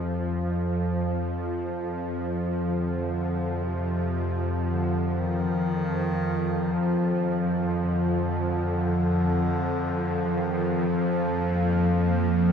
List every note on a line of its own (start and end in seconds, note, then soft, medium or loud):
0.00 12.52 F2 medium
0.00 0.50 C3 medium
0.00 12.52 F3 medium
2.63 3.65 D3 medium
3.64 4.67 C3 medium
4.70 5.21 D3 medium
5.19 6.74 D#3 loud
6.72 7.49 F3 medium
7.75 10.28 D3 medium
10.26 10.36 F3 medium
10.34 10.88 D#3 medium
10.85 12.52 F3 medium
10.85 11.90 F3 medium
11.02 12.52 A#3 medium
12.10 12.52 G#4 medium
12.44 12.52 D#3 medium